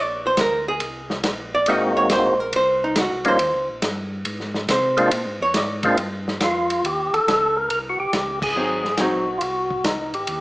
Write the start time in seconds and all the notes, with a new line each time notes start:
Already playing: A#1
0.00 D5
0.27 C5
0.37 D2 A#4, snare, hi-hat pedal, ride
0.68 G#4
0.80 C2, ride
1.10 snare
1.24 A#1, snare, hi-hat pedal, ride
1.55 D5
1.66 G#1 G#3 A#3 C4 D#4 F#4 D#5, ride
1.97 C#5
2.10 A#1 C5, snare, hi-hat pedal, ride
2.40 A#4
2.53 C2 C5, ride
2.84 D#4
2.96 C#2 F#4, snare, hi-hat pedal, ride
3.11 C2
3.25 G#1 G3 A#3 C#4 D#4 F4 C5, ride
3.39 D#2, ride
3.54 C#2
3.69 A#1
3.82 G2, snare, hi-hat pedal, ride
4.25 G#2, ride
4.40 snare
4.54 snare
4.69 C3 C5, snare, hi-hat pedal, ride
4.97 G#3 A#3 C4 D4 F4, ride
5.11 A#2, ride
5.25 G#2
5.40 F2 C#5
5.54 G#2 D5, snare, hi-hat pedal, ride
5.83 G#3 A#3 C4 D4 F4, kick, ride
5.97 G2, ride
6.28 snare
6.40 F2 F4, snare, hi-hat pedal, ride
6.70 ride
6.84 D#2 G4, ride
7.13 D#2 A4, ride
7.27 C#2, snare, hi-hat pedal, ride
7.57 A#4
7.70 C2 A#4, ride
7.89 F#4
8.00 C2 G4
8.13 C#2, snare, hi-hat pedal, ride
8.42 G#4, kick, crash
8.56 G#1 F#3 C4 D#4
8.85 snare
8.97 A#1 F#3 C4 D#4 F#4, snare, hi-hat pedal, ride
9.38 F4 F#4, ride
9.42 C2
9.70 kick
9.84 C#2 D#4, snare, hi-hat pedal, ride
9.99 C2
10.14 G#1 G4, ride
10.27 D#2, ride